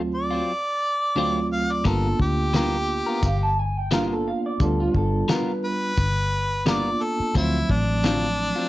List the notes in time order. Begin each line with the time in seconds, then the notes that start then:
Already playing: D2 F#3 A3 C4 F4
0.15 D5
0.31 F#3 C4 F4
1.15 D2 D3 F#3 A3 C4 F4
1.53 F5
1.72 D5
1.84 G1 G3 A#3 B3 D4 F4 A4 A#4, kick, closed hi-hat
2.20 D2 G4, kick
2.54 G3 B3 F4 A#4, snare, closed hi-hat
3.06 B3 F4 A#4
3.23 G1 F5, kick, closed hi-hat
3.43 A5
3.59 G#5
3.77 G5
3.91 G3 A#3 B3 D4 F4 A#4 F5, snare, closed hi-hat
4.13 A4
4.28 F5
4.46 D5
4.60 D2 G3 B3 D4 F4 A4, kick, closed hi-hat
4.80 F4
4.95 G1 A4, kick
5.28 G3 B3 F4 A#4 B4, snare, closed hi-hat
5.65 B4
5.97 G1, kick, closed hi-hat
6.65 G3 A#3 B3 D4 F4 A#4, snare, closed hi-hat
6.69 D5
7.04 A4
7.20 muted fingered electric bass stroke
7.34 D2 D3 F3 F#3 A3 C4 E4 F4, kick, closed hi-hat
7.69 A1 D4, kick
8.04 D3 F#3 C4 F4, snare, closed hi-hat
8.56 F#3 C4 F4